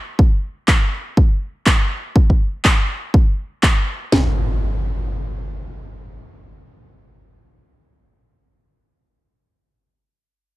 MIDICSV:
0, 0, Header, 1, 3, 480
1, 0, Start_track
1, 0, Tempo, 491803
1, 183, Time_signature, 4, 2, 24, 8
1, 10309, End_track
2, 0, Start_track
2, 0, Title_t, "Impact"
2, 0, Program_c, 0, 103
2, 4024, Note_on_c, 0, 60, 61
2, 7913, Note_off_c, 0, 60, 0
2, 10309, End_track
3, 0, Start_track
3, 0, Title_t, "Drums"
3, 185, Note_on_c, 9, 36, 106
3, 282, Note_off_c, 9, 36, 0
3, 664, Note_on_c, 9, 39, 107
3, 665, Note_on_c, 9, 36, 110
3, 762, Note_off_c, 9, 36, 0
3, 762, Note_off_c, 9, 39, 0
3, 1144, Note_on_c, 9, 36, 106
3, 1242, Note_off_c, 9, 36, 0
3, 1625, Note_on_c, 9, 36, 106
3, 1625, Note_on_c, 9, 39, 113
3, 1722, Note_off_c, 9, 36, 0
3, 1722, Note_off_c, 9, 39, 0
3, 2105, Note_on_c, 9, 36, 106
3, 2202, Note_off_c, 9, 36, 0
3, 2243, Note_on_c, 9, 36, 59
3, 2341, Note_off_c, 9, 36, 0
3, 2584, Note_on_c, 9, 39, 109
3, 2585, Note_on_c, 9, 36, 106
3, 2682, Note_off_c, 9, 36, 0
3, 2682, Note_off_c, 9, 39, 0
3, 3065, Note_on_c, 9, 36, 114
3, 3162, Note_off_c, 9, 36, 0
3, 3544, Note_on_c, 9, 39, 118
3, 3545, Note_on_c, 9, 36, 110
3, 3642, Note_off_c, 9, 39, 0
3, 3643, Note_off_c, 9, 36, 0
3, 4025, Note_on_c, 9, 38, 100
3, 4122, Note_off_c, 9, 38, 0
3, 10309, End_track
0, 0, End_of_file